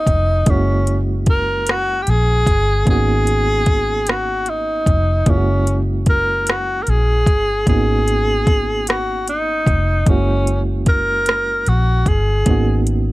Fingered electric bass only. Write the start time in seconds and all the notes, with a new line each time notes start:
0.07 F1
0.47 F#1
2.08 A#1
2.47 G1
2.87 G#1
4.87 F1
5.27 F#1
6.88 A#1
7.27 G1
7.67 G#1
9.67 F1
10.07 F#1
11.68 A#1
12.07 G1
12.47 G#1